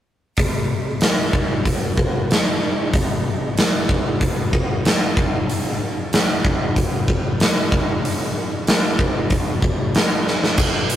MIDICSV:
0, 0, Header, 1, 2, 480
1, 0, Start_track
1, 0, Tempo, 637620
1, 290, Time_signature, 4, 2, 24, 8
1, 8251, End_track
2, 0, Start_track
2, 0, Title_t, "Drums"
2, 277, Note_on_c, 9, 46, 41
2, 284, Note_on_c, 9, 36, 89
2, 352, Note_off_c, 9, 46, 0
2, 359, Note_off_c, 9, 36, 0
2, 759, Note_on_c, 9, 46, 48
2, 767, Note_on_c, 9, 38, 86
2, 834, Note_off_c, 9, 46, 0
2, 842, Note_off_c, 9, 38, 0
2, 1003, Note_on_c, 9, 36, 77
2, 1079, Note_off_c, 9, 36, 0
2, 1246, Note_on_c, 9, 36, 64
2, 1246, Note_on_c, 9, 46, 42
2, 1321, Note_off_c, 9, 36, 0
2, 1322, Note_off_c, 9, 46, 0
2, 1487, Note_on_c, 9, 36, 72
2, 1562, Note_off_c, 9, 36, 0
2, 1737, Note_on_c, 9, 46, 46
2, 1745, Note_on_c, 9, 38, 86
2, 1812, Note_off_c, 9, 46, 0
2, 1820, Note_off_c, 9, 38, 0
2, 2210, Note_on_c, 9, 36, 95
2, 2214, Note_on_c, 9, 46, 45
2, 2285, Note_off_c, 9, 36, 0
2, 2290, Note_off_c, 9, 46, 0
2, 2691, Note_on_c, 9, 46, 46
2, 2699, Note_on_c, 9, 38, 97
2, 2766, Note_off_c, 9, 46, 0
2, 2775, Note_off_c, 9, 38, 0
2, 2929, Note_on_c, 9, 36, 80
2, 3005, Note_off_c, 9, 36, 0
2, 3168, Note_on_c, 9, 46, 39
2, 3169, Note_on_c, 9, 36, 63
2, 3243, Note_off_c, 9, 46, 0
2, 3245, Note_off_c, 9, 36, 0
2, 3411, Note_on_c, 9, 36, 73
2, 3486, Note_off_c, 9, 36, 0
2, 3654, Note_on_c, 9, 46, 42
2, 3662, Note_on_c, 9, 38, 91
2, 3729, Note_off_c, 9, 46, 0
2, 3737, Note_off_c, 9, 38, 0
2, 3892, Note_on_c, 9, 36, 89
2, 3967, Note_off_c, 9, 36, 0
2, 4137, Note_on_c, 9, 46, 40
2, 4212, Note_off_c, 9, 46, 0
2, 4613, Note_on_c, 9, 46, 49
2, 4622, Note_on_c, 9, 38, 91
2, 4689, Note_off_c, 9, 46, 0
2, 4697, Note_off_c, 9, 38, 0
2, 4852, Note_on_c, 9, 36, 85
2, 4928, Note_off_c, 9, 36, 0
2, 5091, Note_on_c, 9, 36, 71
2, 5093, Note_on_c, 9, 46, 40
2, 5167, Note_off_c, 9, 36, 0
2, 5168, Note_off_c, 9, 46, 0
2, 5331, Note_on_c, 9, 36, 72
2, 5406, Note_off_c, 9, 36, 0
2, 5572, Note_on_c, 9, 46, 47
2, 5581, Note_on_c, 9, 38, 96
2, 5648, Note_off_c, 9, 46, 0
2, 5656, Note_off_c, 9, 38, 0
2, 5813, Note_on_c, 9, 36, 90
2, 5888, Note_off_c, 9, 36, 0
2, 6060, Note_on_c, 9, 46, 46
2, 6135, Note_off_c, 9, 46, 0
2, 6529, Note_on_c, 9, 46, 43
2, 6538, Note_on_c, 9, 38, 101
2, 6605, Note_off_c, 9, 46, 0
2, 6613, Note_off_c, 9, 38, 0
2, 6767, Note_on_c, 9, 36, 77
2, 6843, Note_off_c, 9, 36, 0
2, 7002, Note_on_c, 9, 46, 39
2, 7005, Note_on_c, 9, 36, 74
2, 7077, Note_off_c, 9, 46, 0
2, 7080, Note_off_c, 9, 36, 0
2, 7245, Note_on_c, 9, 36, 79
2, 7320, Note_off_c, 9, 36, 0
2, 7488, Note_on_c, 9, 46, 42
2, 7496, Note_on_c, 9, 38, 92
2, 7563, Note_off_c, 9, 46, 0
2, 7571, Note_off_c, 9, 38, 0
2, 7736, Note_on_c, 9, 38, 46
2, 7811, Note_off_c, 9, 38, 0
2, 7857, Note_on_c, 9, 38, 67
2, 7932, Note_off_c, 9, 38, 0
2, 7962, Note_on_c, 9, 49, 85
2, 7965, Note_on_c, 9, 36, 101
2, 8037, Note_off_c, 9, 49, 0
2, 8041, Note_off_c, 9, 36, 0
2, 8203, Note_on_c, 9, 42, 55
2, 8251, Note_off_c, 9, 42, 0
2, 8251, End_track
0, 0, End_of_file